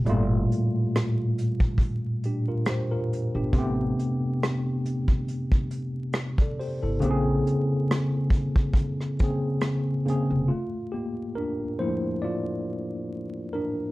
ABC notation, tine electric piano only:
X:1
M:4/4
L:1/16
Q:"Swing 16ths" 1/4=69
K:Gdor
V:1 name="Tine electric piano"
z8 z2 [DG] [FB] [Gc] [FB]2 [DG]- | [DG] z12 [Ad] [Gc] [EA]- | [EA] z12 z3 | [A,F]2 [B,G]2 [DB]2 [F,A,B,Ec]2 [Fd]6 [DB]2 |]
V:2 name="Tine electric piano"
[A,,B,,G,A,F]6 z8 z2 | [C,A,=B,G]6 z8 z2 | [_D,B,CG_A]6 z4 [D,B,CA]4 [D,B,CA]2 | z16 |]